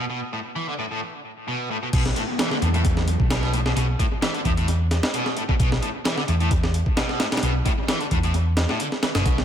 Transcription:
0.10 B2
0.33 A2
0.56 E3
0.68 D3
0.79 A2
0.91 A2
1.48 B2
1.71 A2
1.83 B2
1.93 B1 B2, kick, closed hi-hat, crash, downlifter
2.06 snare
2.16 A2, closed hi-hat
2.39 E3, snare, closed hi-hat
2.51 D3, snare
2.62 E2 A2, closed hi-hat
2.74 A2, closed hi-hat
2.85 kick, closed hi-hat
2.97 snare
3.08 closed hi-hat
3.20 B1, kick
3.30 B2, snare, closed hi-hat
3.43 snare
3.53 A2, closed hi-hat
3.66 B2, snare
3.76 B1 B2, closed hi-hat
3.99 A2, kick, closed hi-hat
4.22 E3, snare, closed hi-hat
4.34 D3, closed hi-hat
4.45 E2 A2, kick, closed hi-hat
4.57 A2, closed hi-hat
4.68 closed hi-hat
4.91 snare, closed hi-hat
5.03 snare
5.14 B2, closed hi-hat
5.26 snare
5.37 A2, closed hi-hat
5.49 B2, kick
5.60 B1 B2, kick, closed hi-hat
5.72 snare
5.83 A2, closed hi-hat
6.05 E3, snare, closed hi-hat
6.18 D3, snare
6.28 E2 A2, closed hi-hat
6.40 A2, closed hi-hat
6.51 kick, closed hi-hat
6.64 snare
6.74 closed hi-hat
6.86 kick
6.97 B2, snare, closed hi-hat
7.09 snare
7.20 A2, snare, closed hi-hat
7.32 B2, snare, closed hi-hat
7.37 snare, closed hi-hat
7.43 B1 B2, closed hi-hat
7.66 A2, kick, closed hi-hat
7.88 E3, snare, closed hi-hat
8.01 D3, closed hi-hat
8.11 E2 A2, kick, closed hi-hat
8.23 A2, closed hi-hat
8.34 closed hi-hat
8.57 snare, closed hi-hat
8.69 A2, snare
8.80 D3, closed hi-hat
8.92 snare
9.03 E3, snare, closed hi-hat
9.15 F#1 B2, snare, closed hi-hat
9.26 B1 B2, kick, closed hi-hat
9.38 snare

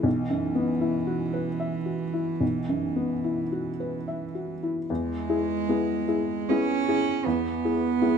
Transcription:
0.03 B1 E3
0.30 F#2
0.55 B3
0.81 E4
1.07 F#4
1.33 B4
1.60 E5
1.86 F#4
2.13 E4
2.41 B1
2.69 F#2
2.96 B3
3.24 E4
3.52 F#4
3.80 B4
4.08 E5
4.35 F#4
4.63 E4
4.89 E2 G#3
5.29 E4 G#4
5.69 B3 E4 G#4
6.08 E4 G#4
6.49 B3 C#4 E4 G#4
6.88 E4 G#4
7.25 E2 B3
7.64 E4 G#4
8.02 B3 E4 G#4

